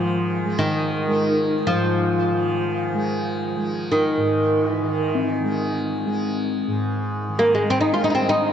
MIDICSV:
0, 0, Header, 1, 4, 480
1, 0, Start_track
1, 0, Key_signature, -4, "major"
1, 0, Tempo, 500000
1, 8188, End_track
2, 0, Start_track
2, 0, Title_t, "Singing bowl"
2, 0, Program_c, 0, 14
2, 0, Note_on_c, 0, 65, 51
2, 4024, Note_off_c, 0, 65, 0
2, 4943, Note_on_c, 0, 60, 46
2, 8188, Note_off_c, 0, 60, 0
2, 8188, End_track
3, 0, Start_track
3, 0, Title_t, "Oud"
3, 0, Program_c, 1, 24
3, 0, Note_on_c, 1, 53, 68
3, 502, Note_off_c, 1, 53, 0
3, 563, Note_on_c, 1, 51, 69
3, 1597, Note_off_c, 1, 51, 0
3, 1601, Note_on_c, 1, 53, 71
3, 3755, Note_off_c, 1, 53, 0
3, 3759, Note_on_c, 1, 51, 51
3, 4479, Note_off_c, 1, 51, 0
3, 4479, Note_on_c, 1, 52, 51
3, 4681, Note_off_c, 1, 52, 0
3, 4681, Note_on_c, 1, 51, 51
3, 4892, Note_off_c, 1, 51, 0
3, 4892, Note_on_c, 1, 52, 51
3, 5094, Note_off_c, 1, 52, 0
3, 5094, Note_on_c, 1, 51, 51
3, 5804, Note_off_c, 1, 51, 0
3, 7094, Note_on_c, 1, 58, 72
3, 7236, Note_off_c, 1, 58, 0
3, 7245, Note_on_c, 1, 56, 61
3, 7368, Note_off_c, 1, 56, 0
3, 7394, Note_on_c, 1, 60, 77
3, 7489, Note_off_c, 1, 60, 0
3, 7493, Note_on_c, 1, 63, 62
3, 7580, Note_off_c, 1, 63, 0
3, 7619, Note_on_c, 1, 65, 62
3, 7706, Note_off_c, 1, 65, 0
3, 7718, Note_on_c, 1, 63, 61
3, 7766, Note_off_c, 1, 63, 0
3, 7778, Note_on_c, 1, 63, 50
3, 7804, Note_off_c, 1, 63, 0
3, 7822, Note_on_c, 1, 60, 67
3, 7948, Note_off_c, 1, 60, 0
3, 7960, Note_on_c, 1, 63, 71
3, 8188, Note_off_c, 1, 63, 0
3, 8188, End_track
4, 0, Start_track
4, 0, Title_t, "Tanpura"
4, 0, Program_c, 2, 104
4, 0, Note_on_c, 2, 44, 50
4, 0, Note_on_c, 2, 51, 48
4, 0, Note_on_c, 2, 56, 54
4, 426, Note_off_c, 2, 56, 0
4, 426, Note_on_c, 2, 56, 50
4, 1031, Note_off_c, 2, 56, 0
4, 1031, Note_on_c, 2, 56, 51
4, 1635, Note_off_c, 2, 44, 0
4, 1639, Note_on_c, 2, 44, 45
4, 2220, Note_off_c, 2, 51, 0
4, 2224, Note_on_c, 2, 51, 50
4, 2824, Note_off_c, 2, 56, 0
4, 2824, Note_on_c, 2, 56, 54
4, 3423, Note_off_c, 2, 56, 0
4, 3423, Note_on_c, 2, 56, 44
4, 4001, Note_off_c, 2, 44, 0
4, 4005, Note_on_c, 2, 44, 48
4, 4616, Note_off_c, 2, 51, 0
4, 4620, Note_on_c, 2, 51, 45
4, 5219, Note_off_c, 2, 56, 0
4, 5219, Note_on_c, 2, 56, 46
4, 5816, Note_off_c, 2, 56, 0
4, 5816, Note_on_c, 2, 56, 45
4, 6406, Note_off_c, 2, 44, 0
4, 6409, Note_on_c, 2, 44, 45
4, 6997, Note_off_c, 2, 51, 0
4, 7001, Note_on_c, 2, 51, 48
4, 7614, Note_off_c, 2, 56, 0
4, 7614, Note_on_c, 2, 56, 52
4, 8188, Note_off_c, 2, 44, 0
4, 8188, Note_off_c, 2, 51, 0
4, 8188, Note_off_c, 2, 56, 0
4, 8188, End_track
0, 0, End_of_file